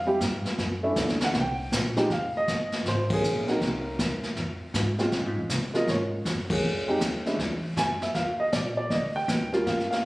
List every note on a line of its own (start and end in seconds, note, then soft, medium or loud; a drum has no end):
0.00 0.20 F2 medium
0.00 0.58 F5 medium
0.07 0.19 G3 medium
0.07 0.19 C4 medium
0.07 0.20 E4 medium
0.07 0.20 G4 medium
0.21 0.44 G2 medium
0.21 kick soft
0.21 snare medium
0.21 hi-hat pedal medium
0.45 muted upright bass stroke soft
0.45 snare soft
0.58 0.95 F#2 medium
0.58 brush sweep soft
0.58 kick soft
0.58 snare soft
0.83 1.32 A3 medium
0.83 1.32 C#4 medium
0.83 1.32 D4 medium
0.83 1.32 E4 medium
0.96 1.33 D2 medium
0.96 kick soft
0.96 snare medium
0.96 hi-hat pedal medium
1.09 snare soft
1.21 1.36 F#5 loud
1.21 snare soft
1.21 snare medium
1.34 1.71 C2 medium
1.34 brush sweep soft
1.34 kick soft
1.34 snare soft
1.41 1.73 G5 medium
1.72 2.09 A#1 medium
1.72 kick soft
1.72 snare medium
1.72 hi-hat pedal medium
1.97 2.09 F2 medium
1.97 2.09 G#3 medium
1.97 2.09 C4 medium
1.97 2.09 D#4 medium
1.97 2.09 G4 medium
1.97 snare soft
2.10 2.47 F1 medium
2.10 2.34 F5 medium
2.10 brush sweep soft
2.10 kick soft
2.10 snare soft
2.37 2.71 D#5 loud
2.48 2.84 G1 medium
2.48 kick soft
2.48 snare medium
2.48 hi-hat pedal soft
2.72 snare soft
2.85 3.22 G#1 medium
2.85 3.12 C5 medium
2.85 brush sweep soft
2.85 kick soft
2.85 snare soft
3.10 3.47 G#4 loud
3.10 kick medium
3.10 ride medium
3.23 3.60 A#1 medium
3.23 hi-hat pedal soft
3.47 3.96 A#3 medium
3.47 3.96 C4 medium
3.47 3.97 D#4 medium
3.47 3.97 F#4 medium
3.47 snare soft
3.52 4.21 A#4 medium
3.61 3.98 C2 medium
3.61 brush sweep soft
3.61 kick soft
3.61 snare soft
3.99 4.36 D#2 medium
3.99 kick soft
3.99 snare medium
3.99 hi-hat pedal soft
4.23 snare soft
4.36 4.73 F2 medium
4.36 brush sweep soft
4.36 kick soft
4.36 snare soft
4.74 5.11 G#2 medium
4.74 kick soft
4.74 snare medium
4.74 hi-hat pedal medium
4.98 5.47 G#3 medium
4.98 5.48 C4 medium
4.98 5.48 C#4 medium
4.98 5.48 F4 medium
4.98 snare soft
5.12 5.26 A#2 medium
5.12 brush sweep soft
5.12 kick soft
5.12 snare soft
5.26 5.38 G#2 medium
5.38 5.49 F2 medium
5.50 5.87 C3 medium
5.50 kick soft
5.50 snare medium
5.50 hi-hat pedal medium
5.74 6.23 G#3 medium
5.74 6.23 A#3 medium
5.74 6.23 C#4 medium
5.74 6.23 F4 medium
5.74 5.89 D#5 medium
5.74 snare soft
5.87 6.24 G#2 medium
5.87 6.47 C#5 medium
5.87 brush sweep soft
5.87 kick soft
5.87 snare soft
6.25 6.62 F#2 medium
6.25 kick soft
6.25 snare medium
6.25 hi-hat pedal medium
6.50 7.61 G#4 medium
6.50 kick medium
6.50 ride medium
6.63 7.00 F2 medium
6.63 brush sweep soft
6.88 7.00 G#3 medium
6.88 7.00 C4 medium
6.88 7.01 D#4 medium
6.88 7.01 G4 medium
7.01 7.38 D#2 medium
7.01 kick soft
7.01 snare medium
7.01 hi-hat pedal medium
7.26 7.38 G#3 medium
7.26 7.38 C#4 medium
7.26 7.39 D4 medium
7.26 7.39 E4 medium
7.26 snare soft
7.39 7.76 E2 medium
7.39 brush sweep medium
7.39 kick soft
7.39 snare soft
7.77 8.14 F#2 medium
7.77 8.00 G#5 medium
7.77 kick soft
7.77 snare medium
7.77 hi-hat pedal medium
8.01 8.07 E5 medium
8.01 snare soft
8.14 8.52 D#2 medium
8.14 8.41 F5 medium
8.14 brush sweep soft
8.14 kick soft
8.14 snare soft
8.40 8.45 D#5 medium
8.52 8.90 A#1 medium
8.52 8.59 D5 medium
8.52 kick soft
8.52 snare medium
8.52 hi-hat pedal medium
8.77 8.91 D5 medium
8.90 9.27 D2 medium
8.90 9.14 D#5 medium
8.90 brush sweep soft
8.90 kick soft
8.90 snare soft
9.16 9.68 G5 medium
9.28 9.65 D#2 medium
9.28 kick soft
9.28 snare medium
9.28 hi-hat pedal soft
9.53 10.01 G3 medium
9.53 10.02 A#3 medium
9.53 10.02 C#4 medium
9.53 10.02 F4 medium
9.53 snare soft
9.66 10.03 G2 medium
9.66 9.89 F5 medium
9.66 brush sweep soft
9.66 kick soft
9.66 snare soft
9.80 snare soft
9.91 9.96 F5 medium
9.91 snare soft